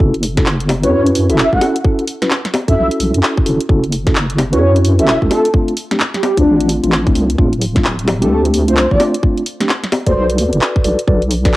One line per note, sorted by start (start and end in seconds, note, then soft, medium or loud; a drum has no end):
0.00 0.85 F#1 loud
0.00 0.13 C#4 medium
0.00 0.13 E4 medium
0.00 0.13 F#4 medium
0.00 0.13 A4 loud
0.00 kick loud
0.14 closed hi-hat soft
0.23 open hi-hat loud
0.37 0.46 C#4 medium
0.37 0.46 E4 medium
0.37 0.46 F#4 medium
0.37 0.46 A4 medium
0.37 kick loud
0.37 snare medium
0.37 closed hi-hat medium
0.46 clap loud
0.60 closed hi-hat medium
0.69 open hi-hat loud
0.69 high bongo medium
0.83 1.31 F#2 loud
0.83 1.26 C#4 medium
0.83 1.26 E4 medium
0.83 1.26 F#4 medium
0.83 1.26 B4 loud
0.83 0.89 C#5 medium
0.83 closed hi-hat medium
0.92 1.02 C#5 medium
1.06 closed hi-hat medium
1.15 open hi-hat loud
1.30 1.48 E1 loud
1.30 1.46 C#4 medium
1.30 1.46 E4 medium
1.30 1.46 F#4 medium
1.30 1.46 A4 loud
1.30 1.35 E5 medium
1.30 closed hi-hat medium
1.38 1.48 E5 medium
1.38 clap loud
1.53 1.60 C#2 loud
1.53 1.60 C#4 medium
1.53 1.60 E4 medium
1.53 1.60 F#4 medium
1.53 1.60 A4 medium
1.53 1.64 F#5 medium
1.53 kick medium
1.61 1.75 C#4 medium
1.61 1.75 E4 medium
1.61 1.75 F#4 medium
1.61 1.75 A4 loud
1.61 open hi-hat loud
1.61 high bongo medium
1.76 closed hi-hat medium
1.84 2.03 C#4 medium
1.84 2.03 E4 medium
1.84 2.03 F#4 medium
1.84 2.03 A4 medium
1.84 kick loud
1.99 closed hi-hat soft
2.07 open hi-hat loud
2.22 2.30 C#4 medium
2.22 2.30 E4 medium
2.22 2.30 F#4 medium
2.22 2.30 B4 medium
2.22 snare medium
2.22 closed hi-hat medium
2.31 clap loud
2.45 snare medium
2.45 closed hi-hat soft
2.54 open hi-hat loud
2.54 high bongo medium
2.68 2.75 F#2 medium
2.68 3.44 C#4 medium
2.68 3.44 E4 medium
2.68 3.44 F#4 medium
2.68 3.44 A4 medium
2.68 2.74 E5 medium
2.68 kick medium
2.68 closed hi-hat medium
2.77 2.89 B1 loud
2.77 2.86 E5 medium
2.91 closed hi-hat medium
3.00 3.12 B1 medium
3.00 open hi-hat loud
3.14 3.22 F#2 medium
3.14 closed hi-hat medium
3.23 clap loud
3.37 kick loud
3.46 3.58 F#1 loud
3.46 3.60 C#4 medium
3.46 3.60 E4 medium
3.46 3.60 F#4 medium
3.46 3.60 A4 medium
3.46 open hi-hat loud
3.60 closed hi-hat medium
3.69 4.54 F#1 loud
3.69 3.83 C#4 medium
3.69 3.83 E4 medium
3.69 3.83 F#4 medium
3.69 3.83 A4 medium
3.69 kick loud
3.84 closed hi-hat soft
3.92 open hi-hat medium
4.07 4.15 C#4 medium
4.07 4.15 E4 medium
4.07 4.15 F#4 medium
4.07 4.15 A4 medium
4.07 kick loud
4.07 snare medium
4.07 closed hi-hat medium
4.15 clap loud
4.30 closed hi-hat medium
4.38 open hi-hat loud
4.38 high bongo medium
4.53 5.00 F#2 medium
4.53 4.96 C#4 loud
4.53 4.96 E4 medium
4.53 4.96 F#4 medium
4.53 4.96 B4 loud
4.53 4.58 C#5 medium
4.53 closed hi-hat medium
4.61 4.71 C#5 medium
4.76 closed hi-hat soft
4.85 open hi-hat loud
4.99 5.17 E1 loud
4.99 5.15 C#4 medium
4.99 5.15 E4 medium
4.99 5.15 F#4 medium
4.99 5.15 A4 loud
4.99 5.05 E5 medium
4.99 closed hi-hat medium
5.08 5.17 E5 medium
5.08 clap loud
5.22 5.29 C#2 loud
5.22 5.29 C#4 medium
5.22 5.29 E4 medium
5.22 5.29 F#4 medium
5.22 5.29 A4 medium
5.22 kick medium
5.31 5.44 A3 medium
5.31 5.44 C4 medium
5.31 5.44 D4 medium
5.31 5.44 F4 loud
5.31 5.46 A4 medium
5.31 open hi-hat loud
5.31 high bongo medium
5.45 closed hi-hat medium
5.54 5.73 A3 medium
5.54 5.73 C4 medium
5.54 5.73 D4 medium
5.54 5.73 F4 medium
5.54 kick loud
5.68 closed hi-hat soft
5.77 open hi-hat loud
5.91 5.99 A3 medium
5.91 5.99 C4 medium
5.91 5.99 D4 medium
5.91 5.99 G4 medium
5.91 snare medium
5.91 closed hi-hat medium
6.00 clap loud
6.14 6.20 G4 medium
6.14 snare soft
6.14 closed hi-hat soft
6.23 6.32 G4 medium
6.23 open hi-hat medium
6.23 high bongo medium
6.37 6.47 D2 loud
6.37 6.81 A3 medium
6.37 6.81 C4 medium
6.37 6.69 D4 medium
6.37 6.81 D4 medium
6.37 6.81 F4 medium
6.37 kick medium
6.37 closed hi-hat medium
6.46 6.80 A1 medium
6.61 closed hi-hat medium
6.69 open hi-hat loud
6.84 7.13 A1 medium
6.84 7.00 A3 medium
6.84 7.00 C4 medium
6.84 7.00 D4 medium
6.84 7.00 F4 medium
6.84 closed hi-hat medium
6.92 clap loud
7.07 7.14 A3 medium
7.07 7.14 C4 medium
7.07 7.14 D4 medium
7.07 7.14 E4 medium
7.07 kick loud
7.07 closed hi-hat soft
7.15 7.36 C2 loud
7.15 7.29 A3 medium
7.15 7.29 C4 medium
7.15 7.29 D4 medium
7.15 7.29 F4 medium
7.15 open hi-hat loud
7.30 closed hi-hat medium
7.38 8.23 D1 loud
7.38 7.52 A3 medium
7.38 7.52 C4 medium
7.38 7.52 D4 medium
7.38 7.52 F4 loud
7.38 kick loud
7.53 closed hi-hat soft
7.62 open hi-hat loud
7.76 7.84 A3 medium
7.76 7.84 C4 medium
7.76 7.84 D4 medium
7.76 7.84 F4 medium
7.76 kick loud
7.76 snare medium
7.76 closed hi-hat medium
7.85 clap loud
7.99 closed hi-hat soft
8.08 open hi-hat medium
8.08 high bongo medium
8.22 8.70 D2 medium
8.22 8.65 A3 loud
8.22 8.65 C4 medium
8.22 8.65 D4 medium
8.22 8.65 G4 loud
8.22 8.28 A4 medium
8.22 closed hi-hat medium
8.31 8.40 A4 medium
8.45 closed hi-hat medium
8.54 open hi-hat loud
8.68 8.87 C2 loud
8.68 8.84 A3 medium
8.68 8.84 C4 medium
8.68 8.84 D4 medium
8.68 8.84 F4 medium
8.68 8.74 C5 medium
8.68 closed hi-hat medium
8.77 8.86 C5 medium
8.77 clap loud
8.91 8.99 A1 loud
8.91 8.99 A3 medium
8.91 8.99 C4 medium
8.91 8.99 D4 medium
8.91 8.99 F4 medium
8.91 9.02 D5 medium
8.91 kick medium
9.00 9.13 A3 medium
9.00 9.13 C4 medium
9.00 9.13 D4 medium
9.00 9.13 F4 loud
9.00 open hi-hat loud
9.00 high bongo medium
9.14 closed hi-hat medium
9.23 9.42 A3 medium
9.23 9.42 C4 medium
9.23 9.42 D4 medium
9.23 9.42 F4 medium
9.23 kick loud
9.37 closed hi-hat soft
9.46 open hi-hat loud
9.60 9.69 A3 medium
9.60 9.69 C4 medium
9.60 9.69 D4 medium
9.60 9.69 G4 medium
9.60 snare medium
9.60 closed hi-hat medium
9.69 clap loud
9.84 snare soft
9.84 closed hi-hat medium
9.92 open hi-hat loud
9.92 high bongo medium
10.06 10.14 D2 loud
10.06 10.82 F#4 medium
10.06 10.82 A4 medium
10.06 10.82 B4 medium
10.06 10.12 C5 medium
10.06 10.82 D5 medium
10.06 kick medium
10.06 closed hi-hat medium
10.15 10.40 B1 loud
10.15 10.25 C5 medium
10.30 closed hi-hat medium
10.38 10.50 E2 medium
10.38 open hi-hat loud
10.53 10.60 F#1 loud
10.53 closed hi-hat medium
10.61 clap loud
10.76 kick loud
10.84 10.97 B1 loud
10.84 10.98 F#4 medium
10.84 10.98 A4 medium
10.84 10.98 B4 medium
10.84 10.98 D5 medium
10.84 open hi-hat loud
10.99 closed hi-hat medium
11.08 11.56 B1 medium
11.08 11.21 F#4 medium
11.08 11.21 A4 medium
11.08 11.21 B4 medium
11.08 11.21 D5 loud
11.08 kick loud
11.22 closed hi-hat soft
11.31 open hi-hat loud
11.45 11.53 F#4 medium
11.45 11.53 A4 medium
11.45 11.53 B4 medium
11.45 11.53 D5 medium
11.45 kick loud
11.45 snare medium
11.45 closed hi-hat medium